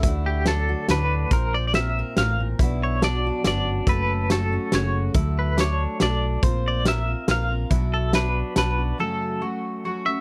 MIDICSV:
0, 0, Header, 1, 7, 480
1, 0, Start_track
1, 0, Tempo, 426439
1, 39, Time_signature, 3, 2, 24, 8
1, 11488, End_track
2, 0, Start_track
2, 0, Title_t, "Clean electric guitar"
2, 0, Program_c, 0, 27
2, 295, Note_on_c, 0, 67, 70
2, 533, Note_off_c, 0, 67, 0
2, 540, Note_on_c, 0, 69, 74
2, 976, Note_off_c, 0, 69, 0
2, 1021, Note_on_c, 0, 71, 77
2, 1493, Note_off_c, 0, 71, 0
2, 1498, Note_on_c, 0, 70, 75
2, 1734, Note_off_c, 0, 70, 0
2, 1738, Note_on_c, 0, 74, 77
2, 1871, Note_off_c, 0, 74, 0
2, 1885, Note_on_c, 0, 74, 54
2, 1960, Note_off_c, 0, 74, 0
2, 1970, Note_on_c, 0, 76, 82
2, 2449, Note_off_c, 0, 76, 0
2, 2453, Note_on_c, 0, 77, 80
2, 2780, Note_off_c, 0, 77, 0
2, 3191, Note_on_c, 0, 73, 76
2, 3420, Note_off_c, 0, 73, 0
2, 3425, Note_on_c, 0, 74, 86
2, 3896, Note_off_c, 0, 74, 0
2, 3910, Note_on_c, 0, 74, 77
2, 4381, Note_on_c, 0, 71, 88
2, 4387, Note_off_c, 0, 74, 0
2, 4856, Note_off_c, 0, 71, 0
2, 4861, Note_on_c, 0, 69, 79
2, 5343, Note_off_c, 0, 69, 0
2, 5345, Note_on_c, 0, 73, 71
2, 5667, Note_off_c, 0, 73, 0
2, 6064, Note_on_c, 0, 71, 66
2, 6298, Note_off_c, 0, 71, 0
2, 6309, Note_on_c, 0, 73, 80
2, 6777, Note_off_c, 0, 73, 0
2, 6782, Note_on_c, 0, 74, 74
2, 7217, Note_off_c, 0, 74, 0
2, 7515, Note_on_c, 0, 74, 74
2, 7741, Note_off_c, 0, 74, 0
2, 7746, Note_on_c, 0, 76, 76
2, 8180, Note_off_c, 0, 76, 0
2, 8230, Note_on_c, 0, 77, 80
2, 8662, Note_off_c, 0, 77, 0
2, 8933, Note_on_c, 0, 69, 68
2, 9150, Note_off_c, 0, 69, 0
2, 9173, Note_on_c, 0, 71, 69
2, 9644, Note_off_c, 0, 71, 0
2, 9657, Note_on_c, 0, 71, 71
2, 10129, Note_off_c, 0, 71, 0
2, 10134, Note_on_c, 0, 69, 67
2, 11282, Note_off_c, 0, 69, 0
2, 11322, Note_on_c, 0, 76, 86
2, 11488, Note_off_c, 0, 76, 0
2, 11488, End_track
3, 0, Start_track
3, 0, Title_t, "Mandolin"
3, 0, Program_c, 1, 25
3, 41, Note_on_c, 1, 64, 66
3, 509, Note_off_c, 1, 64, 0
3, 522, Note_on_c, 1, 62, 57
3, 985, Note_off_c, 1, 62, 0
3, 998, Note_on_c, 1, 62, 66
3, 1468, Note_off_c, 1, 62, 0
3, 1478, Note_on_c, 1, 72, 65
3, 1948, Note_off_c, 1, 72, 0
3, 1954, Note_on_c, 1, 70, 58
3, 2426, Note_off_c, 1, 70, 0
3, 2437, Note_on_c, 1, 70, 67
3, 2907, Note_off_c, 1, 70, 0
3, 2919, Note_on_c, 1, 64, 65
3, 3388, Note_off_c, 1, 64, 0
3, 3400, Note_on_c, 1, 62, 58
3, 3864, Note_off_c, 1, 62, 0
3, 3877, Note_on_c, 1, 62, 62
3, 4348, Note_off_c, 1, 62, 0
3, 4357, Note_on_c, 1, 69, 61
3, 4828, Note_off_c, 1, 69, 0
3, 4838, Note_on_c, 1, 66, 57
3, 5308, Note_off_c, 1, 66, 0
3, 5327, Note_on_c, 1, 66, 69
3, 5790, Note_off_c, 1, 66, 0
3, 5794, Note_on_c, 1, 64, 68
3, 6266, Note_off_c, 1, 64, 0
3, 6273, Note_on_c, 1, 62, 60
3, 6739, Note_off_c, 1, 62, 0
3, 6753, Note_on_c, 1, 62, 69
3, 7226, Note_off_c, 1, 62, 0
3, 7238, Note_on_c, 1, 72, 78
3, 7709, Note_off_c, 1, 72, 0
3, 7717, Note_on_c, 1, 70, 61
3, 8184, Note_off_c, 1, 70, 0
3, 8197, Note_on_c, 1, 70, 66
3, 8669, Note_off_c, 1, 70, 0
3, 8672, Note_on_c, 1, 64, 77
3, 9146, Note_off_c, 1, 64, 0
3, 9167, Note_on_c, 1, 62, 64
3, 9622, Note_off_c, 1, 62, 0
3, 9635, Note_on_c, 1, 62, 73
3, 10108, Note_off_c, 1, 62, 0
3, 10127, Note_on_c, 1, 69, 71
3, 10594, Note_off_c, 1, 69, 0
3, 10599, Note_on_c, 1, 66, 62
3, 11070, Note_off_c, 1, 66, 0
3, 11088, Note_on_c, 1, 66, 63
3, 11488, Note_off_c, 1, 66, 0
3, 11488, End_track
4, 0, Start_track
4, 0, Title_t, "Steel-string acoustic guitar"
4, 0, Program_c, 2, 25
4, 5804, Note_on_c, 2, 50, 67
4, 5811, Note_on_c, 2, 57, 75
4, 5812, Note_on_c, 2, 54, 84
4, 5824, Note_on_c, 2, 66, 74
4, 5830, Note_on_c, 2, 69, 86
4, 6249, Note_off_c, 2, 54, 0
4, 6263, Note_on_c, 2, 54, 43
4, 6270, Note_off_c, 2, 57, 0
4, 6280, Note_off_c, 2, 66, 0
4, 6281, Note_off_c, 2, 50, 0
4, 6283, Note_on_c, 2, 57, 50
4, 6287, Note_off_c, 2, 69, 0
4, 6293, Note_on_c, 2, 66, 48
4, 6301, Note_on_c, 2, 69, 54
4, 6742, Note_off_c, 2, 54, 0
4, 6750, Note_off_c, 2, 57, 0
4, 6756, Note_on_c, 2, 54, 53
4, 6764, Note_on_c, 2, 57, 50
4, 6766, Note_off_c, 2, 66, 0
4, 6769, Note_off_c, 2, 69, 0
4, 6778, Note_on_c, 2, 66, 54
4, 6787, Note_on_c, 2, 69, 56
4, 7227, Note_off_c, 2, 54, 0
4, 7231, Note_on_c, 2, 58, 58
4, 7239, Note_off_c, 2, 57, 0
4, 7241, Note_off_c, 2, 66, 0
4, 7243, Note_on_c, 2, 60, 62
4, 7246, Note_on_c, 2, 65, 85
4, 7252, Note_off_c, 2, 69, 0
4, 7260, Note_on_c, 2, 70, 83
4, 7695, Note_off_c, 2, 58, 0
4, 7709, Note_on_c, 2, 58, 43
4, 7713, Note_off_c, 2, 60, 0
4, 7715, Note_off_c, 2, 65, 0
4, 7727, Note_on_c, 2, 60, 48
4, 7729, Note_off_c, 2, 70, 0
4, 7729, Note_on_c, 2, 65, 51
4, 7745, Note_on_c, 2, 70, 60
4, 7934, Note_off_c, 2, 70, 0
4, 7948, Note_on_c, 2, 70, 40
4, 7950, Note_off_c, 2, 65, 0
4, 7954, Note_off_c, 2, 58, 0
4, 7963, Note_off_c, 2, 60, 0
4, 7963, Note_on_c, 2, 65, 40
4, 7984, Note_on_c, 2, 60, 36
4, 8189, Note_on_c, 2, 58, 53
4, 8193, Note_off_c, 2, 60, 0
4, 8193, Note_off_c, 2, 70, 0
4, 8198, Note_off_c, 2, 65, 0
4, 8207, Note_on_c, 2, 60, 61
4, 8211, Note_on_c, 2, 65, 50
4, 8225, Note_on_c, 2, 70, 54
4, 8409, Note_off_c, 2, 70, 0
4, 8423, Note_on_c, 2, 70, 47
4, 8428, Note_off_c, 2, 65, 0
4, 8434, Note_off_c, 2, 58, 0
4, 8442, Note_on_c, 2, 65, 31
4, 8443, Note_off_c, 2, 60, 0
4, 8462, Note_on_c, 2, 60, 35
4, 8669, Note_on_c, 2, 47, 68
4, 8671, Note_off_c, 2, 70, 0
4, 8677, Note_off_c, 2, 60, 0
4, 8680, Note_off_c, 2, 65, 0
4, 8681, Note_on_c, 2, 54, 72
4, 8681, Note_on_c, 2, 59, 69
4, 8684, Note_on_c, 2, 62, 82
4, 8692, Note_on_c, 2, 66, 81
4, 9139, Note_off_c, 2, 54, 0
4, 9143, Note_off_c, 2, 59, 0
4, 9143, Note_on_c, 2, 54, 51
4, 9154, Note_off_c, 2, 47, 0
4, 9157, Note_on_c, 2, 59, 49
4, 9162, Note_off_c, 2, 62, 0
4, 9175, Note_off_c, 2, 66, 0
4, 9176, Note_on_c, 2, 62, 54
4, 9180, Note_on_c, 2, 66, 53
4, 9618, Note_off_c, 2, 54, 0
4, 9632, Note_on_c, 2, 54, 47
4, 9633, Note_off_c, 2, 59, 0
4, 9646, Note_on_c, 2, 59, 58
4, 9648, Note_off_c, 2, 62, 0
4, 9650, Note_off_c, 2, 66, 0
4, 9660, Note_on_c, 2, 62, 57
4, 9667, Note_on_c, 2, 66, 67
4, 9862, Note_off_c, 2, 66, 0
4, 9876, Note_off_c, 2, 54, 0
4, 9876, Note_on_c, 2, 66, 42
4, 9878, Note_off_c, 2, 62, 0
4, 9883, Note_off_c, 2, 59, 0
4, 9891, Note_on_c, 2, 62, 37
4, 9904, Note_on_c, 2, 59, 37
4, 10109, Note_on_c, 2, 42, 71
4, 10118, Note_off_c, 2, 66, 0
4, 10119, Note_on_c, 2, 49, 70
4, 10123, Note_off_c, 2, 59, 0
4, 10123, Note_on_c, 2, 54, 78
4, 10126, Note_off_c, 2, 62, 0
4, 10127, Note_on_c, 2, 57, 64
4, 10131, Note_on_c, 2, 61, 76
4, 10136, Note_on_c, 2, 66, 77
4, 10586, Note_off_c, 2, 54, 0
4, 10595, Note_off_c, 2, 42, 0
4, 10600, Note_off_c, 2, 49, 0
4, 10600, Note_off_c, 2, 57, 0
4, 10600, Note_on_c, 2, 54, 54
4, 10606, Note_off_c, 2, 61, 0
4, 10608, Note_off_c, 2, 66, 0
4, 10613, Note_on_c, 2, 57, 50
4, 10621, Note_on_c, 2, 61, 52
4, 10629, Note_on_c, 2, 66, 50
4, 11066, Note_off_c, 2, 54, 0
4, 11078, Note_off_c, 2, 57, 0
4, 11080, Note_on_c, 2, 54, 55
4, 11091, Note_off_c, 2, 61, 0
4, 11091, Note_on_c, 2, 57, 58
4, 11095, Note_off_c, 2, 66, 0
4, 11106, Note_on_c, 2, 61, 63
4, 11116, Note_on_c, 2, 66, 74
4, 11304, Note_off_c, 2, 66, 0
4, 11314, Note_off_c, 2, 61, 0
4, 11318, Note_on_c, 2, 66, 46
4, 11320, Note_off_c, 2, 54, 0
4, 11326, Note_off_c, 2, 57, 0
4, 11327, Note_on_c, 2, 61, 44
4, 11339, Note_on_c, 2, 57, 41
4, 11354, Note_on_c, 2, 54, 38
4, 11488, Note_off_c, 2, 54, 0
4, 11488, Note_off_c, 2, 57, 0
4, 11488, Note_off_c, 2, 61, 0
4, 11488, Note_off_c, 2, 66, 0
4, 11488, End_track
5, 0, Start_track
5, 0, Title_t, "Steel-string acoustic guitar"
5, 0, Program_c, 3, 25
5, 42, Note_on_c, 3, 50, 55
5, 51, Note_on_c, 3, 57, 47
5, 64, Note_on_c, 3, 62, 50
5, 71, Note_on_c, 3, 66, 55
5, 531, Note_on_c, 3, 54, 49
5, 760, Note_off_c, 3, 66, 0
5, 773, Note_on_c, 3, 66, 52
5, 1018, Note_on_c, 3, 45, 49
5, 1450, Note_off_c, 3, 50, 0
5, 1455, Note_off_c, 3, 54, 0
5, 1459, Note_off_c, 3, 45, 0
5, 1461, Note_off_c, 3, 62, 0
5, 1483, Note_off_c, 3, 57, 0
5, 1485, Note_off_c, 3, 66, 0
5, 1500, Note_on_c, 3, 46, 64
5, 1510, Note_on_c, 3, 65, 46
5, 1980, Note_on_c, 3, 60, 52
5, 2237, Note_on_c, 3, 70, 59
5, 2448, Note_off_c, 3, 46, 0
5, 2466, Note_on_c, 3, 45, 48
5, 2692, Note_off_c, 3, 45, 0
5, 2702, Note_on_c, 3, 46, 52
5, 2899, Note_off_c, 3, 60, 0
5, 2904, Note_off_c, 3, 65, 0
5, 2908, Note_off_c, 3, 70, 0
5, 2929, Note_off_c, 3, 46, 0
5, 2938, Note_on_c, 3, 47, 62
5, 2951, Note_on_c, 3, 59, 55
5, 2956, Note_on_c, 3, 62, 48
5, 2964, Note_on_c, 3, 66, 50
5, 3415, Note_on_c, 3, 54, 56
5, 3672, Note_off_c, 3, 66, 0
5, 3676, Note_on_c, 3, 66, 60
5, 3888, Note_off_c, 3, 47, 0
5, 3889, Note_on_c, 3, 42, 45
5, 4346, Note_off_c, 3, 59, 0
5, 4347, Note_off_c, 3, 62, 0
5, 4352, Note_off_c, 3, 42, 0
5, 4366, Note_on_c, 3, 42, 59
5, 4371, Note_on_c, 3, 57, 50
5, 4380, Note_on_c, 3, 61, 48
5, 4384, Note_off_c, 3, 66, 0
5, 4388, Note_on_c, 3, 69, 51
5, 4841, Note_off_c, 3, 54, 0
5, 4845, Note_on_c, 3, 54, 54
5, 5082, Note_off_c, 3, 61, 0
5, 5096, Note_on_c, 3, 61, 56
5, 5320, Note_on_c, 3, 49, 51
5, 5770, Note_off_c, 3, 49, 0
5, 5773, Note_off_c, 3, 54, 0
5, 5784, Note_off_c, 3, 69, 0
5, 5802, Note_off_c, 3, 42, 0
5, 5807, Note_off_c, 3, 61, 0
5, 7245, Note_off_c, 3, 57, 0
5, 11488, End_track
6, 0, Start_track
6, 0, Title_t, "Fingered electric bass"
6, 0, Program_c, 4, 33
6, 40, Note_on_c, 4, 38, 84
6, 827, Note_off_c, 4, 38, 0
6, 997, Note_on_c, 4, 38, 76
6, 1391, Note_off_c, 4, 38, 0
6, 1475, Note_on_c, 4, 34, 83
6, 2264, Note_off_c, 4, 34, 0
6, 2446, Note_on_c, 4, 33, 85
6, 2837, Note_off_c, 4, 33, 0
6, 2920, Note_on_c, 4, 35, 89
6, 3707, Note_off_c, 4, 35, 0
6, 3886, Note_on_c, 4, 31, 72
6, 4276, Note_off_c, 4, 31, 0
6, 4352, Note_on_c, 4, 30, 85
6, 5143, Note_off_c, 4, 30, 0
6, 5326, Note_on_c, 4, 30, 85
6, 5717, Note_off_c, 4, 30, 0
6, 5797, Note_on_c, 4, 38, 78
6, 6586, Note_off_c, 4, 38, 0
6, 6770, Note_on_c, 4, 35, 80
6, 7159, Note_off_c, 4, 35, 0
6, 7238, Note_on_c, 4, 34, 93
6, 8027, Note_off_c, 4, 34, 0
6, 8198, Note_on_c, 4, 34, 83
6, 8593, Note_off_c, 4, 34, 0
6, 8681, Note_on_c, 4, 35, 89
6, 9470, Note_off_c, 4, 35, 0
6, 9640, Note_on_c, 4, 35, 84
6, 10034, Note_off_c, 4, 35, 0
6, 11488, End_track
7, 0, Start_track
7, 0, Title_t, "Drums"
7, 32, Note_on_c, 9, 42, 51
7, 36, Note_on_c, 9, 36, 83
7, 145, Note_off_c, 9, 42, 0
7, 149, Note_off_c, 9, 36, 0
7, 512, Note_on_c, 9, 38, 75
7, 512, Note_on_c, 9, 42, 49
7, 625, Note_off_c, 9, 38, 0
7, 625, Note_off_c, 9, 42, 0
7, 995, Note_on_c, 9, 38, 65
7, 995, Note_on_c, 9, 42, 49
7, 1107, Note_off_c, 9, 38, 0
7, 1107, Note_off_c, 9, 42, 0
7, 1474, Note_on_c, 9, 42, 57
7, 1475, Note_on_c, 9, 36, 91
7, 1586, Note_off_c, 9, 42, 0
7, 1588, Note_off_c, 9, 36, 0
7, 1955, Note_on_c, 9, 38, 64
7, 1955, Note_on_c, 9, 42, 49
7, 2068, Note_off_c, 9, 38, 0
7, 2068, Note_off_c, 9, 42, 0
7, 2437, Note_on_c, 9, 38, 72
7, 2437, Note_on_c, 9, 42, 49
7, 2549, Note_off_c, 9, 38, 0
7, 2549, Note_off_c, 9, 42, 0
7, 2919, Note_on_c, 9, 36, 88
7, 2925, Note_on_c, 9, 42, 50
7, 3031, Note_off_c, 9, 36, 0
7, 3038, Note_off_c, 9, 42, 0
7, 3401, Note_on_c, 9, 38, 77
7, 3401, Note_on_c, 9, 42, 47
7, 3514, Note_off_c, 9, 38, 0
7, 3514, Note_off_c, 9, 42, 0
7, 3875, Note_on_c, 9, 38, 65
7, 3875, Note_on_c, 9, 42, 54
7, 3987, Note_off_c, 9, 38, 0
7, 3987, Note_off_c, 9, 42, 0
7, 4354, Note_on_c, 9, 42, 48
7, 4355, Note_on_c, 9, 36, 98
7, 4467, Note_off_c, 9, 36, 0
7, 4467, Note_off_c, 9, 42, 0
7, 4838, Note_on_c, 9, 38, 74
7, 4838, Note_on_c, 9, 42, 54
7, 4951, Note_off_c, 9, 38, 0
7, 4951, Note_off_c, 9, 42, 0
7, 5312, Note_on_c, 9, 38, 73
7, 5312, Note_on_c, 9, 42, 53
7, 5424, Note_off_c, 9, 38, 0
7, 5424, Note_off_c, 9, 42, 0
7, 5787, Note_on_c, 9, 42, 50
7, 5792, Note_on_c, 9, 36, 90
7, 5900, Note_off_c, 9, 42, 0
7, 5905, Note_off_c, 9, 36, 0
7, 6277, Note_on_c, 9, 38, 61
7, 6277, Note_on_c, 9, 42, 50
7, 6389, Note_off_c, 9, 38, 0
7, 6389, Note_off_c, 9, 42, 0
7, 6752, Note_on_c, 9, 38, 67
7, 6752, Note_on_c, 9, 42, 43
7, 6864, Note_off_c, 9, 38, 0
7, 6864, Note_off_c, 9, 42, 0
7, 7235, Note_on_c, 9, 36, 92
7, 7238, Note_on_c, 9, 42, 55
7, 7348, Note_off_c, 9, 36, 0
7, 7350, Note_off_c, 9, 42, 0
7, 7714, Note_on_c, 9, 38, 74
7, 7714, Note_on_c, 9, 42, 51
7, 7826, Note_off_c, 9, 38, 0
7, 7826, Note_off_c, 9, 42, 0
7, 8193, Note_on_c, 9, 38, 73
7, 8193, Note_on_c, 9, 42, 53
7, 8305, Note_off_c, 9, 38, 0
7, 8305, Note_off_c, 9, 42, 0
7, 8674, Note_on_c, 9, 42, 52
7, 8675, Note_on_c, 9, 36, 84
7, 8786, Note_off_c, 9, 42, 0
7, 8788, Note_off_c, 9, 36, 0
7, 9152, Note_on_c, 9, 38, 73
7, 9152, Note_on_c, 9, 42, 51
7, 9265, Note_off_c, 9, 38, 0
7, 9265, Note_off_c, 9, 42, 0
7, 9633, Note_on_c, 9, 38, 73
7, 9633, Note_on_c, 9, 42, 55
7, 9746, Note_off_c, 9, 38, 0
7, 9746, Note_off_c, 9, 42, 0
7, 11488, End_track
0, 0, End_of_file